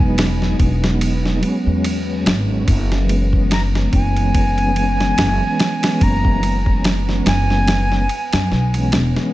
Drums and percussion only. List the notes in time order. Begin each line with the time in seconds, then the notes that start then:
0.00 kick
0.18 snare, ride
0.42 snare
0.59 kick, ride
0.84 snare
1.01 ride
1.25 snare
1.43 ride
1.84 ride
2.26 snare, ride
2.68 kick, ride
2.92 snare
3.09 ride
3.33 kick
3.51 snare, ride
3.75 snare
3.93 kick, ride
4.16 ride
4.34 kick, ride
4.58 ride
4.76 ride
5.00 snare
5.18 snare, ride
5.59 snare, ride
5.83 snare, ride
6.01 kick, ride
6.25 kick
6.43 ride
6.66 kick
6.84 snare, ride
7.09 snare
7.26 snare, ride
7.50 snare
7.67 snare, ride
7.92 snare
8.09 ride
8.33 snare, ride
8.52 snare
8.74 ride
8.92 snare, ride
9.17 snare